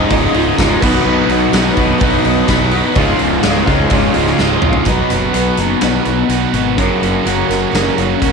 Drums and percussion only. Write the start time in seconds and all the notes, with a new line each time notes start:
0.10 kick, open hi-hat
0.34 open hi-hat
0.58 kick, snare, open hi-hat, tambourine
0.82 kick, crash
1.29 open hi-hat
1.53 snare, open hi-hat, tambourine
1.77 kick, open hi-hat
2.01 kick, open hi-hat
2.25 open hi-hat
2.48 kick, snare, open hi-hat, tambourine
2.71 open hi-hat
2.95 kick, open hi-hat
3.19 open hi-hat
3.43 snare, open hi-hat, tambourine
3.67 kick, open hi-hat
3.90 kick, open hi-hat
4.14 open hi-hat
4.27 snare
4.39 snare, tambourine
4.62 mid tom
4.73 floor tom
4.85 kick, closed hi-hat
5.10 snare, closed hi-hat
5.34 closed hi-hat
5.57 closed hi-hat
5.81 snare, closed hi-hat
6.05 closed hi-hat
6.29 closed hi-hat
6.54 closed hi-hat
6.78 kick, closed hi-hat
7.03 closed hi-hat
7.26 closed hi-hat
7.50 snare, closed hi-hat
7.75 snare, closed hi-hat
7.98 closed hi-hat
8.22 kick, closed hi-hat